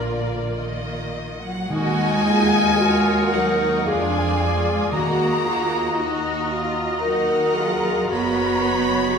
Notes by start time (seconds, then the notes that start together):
Already playing: A#1 D3 A#3 F4 A#4 D5
0.53 D#3 D#5
1.42 F#3 F#5
1.70 D#2 D#3 G#3 D#4 F#4 A#4 D#5 F#5 G#5
2.25 F4 G#4
2.79 F4 F#4 A#4 C#5
3.32 F#3 D#4 A#4 F#5
3.85 F2 G#3 D4 F4 G#4 D5 F5 G#5
4.41 F4
4.91 D#2 D#3 A#3 F#4 D#5 A#5
5.43 F4 F#4
5.96 D#4 F#4
6.46 F4 F#4
6.99 F#3 D#4 A#4 F#5
7.55 F4 G#4
8.09 F#1 B3 F#4 A#4 C#5 D#5 B5
8.61 C#5
9.10 G#4 C#5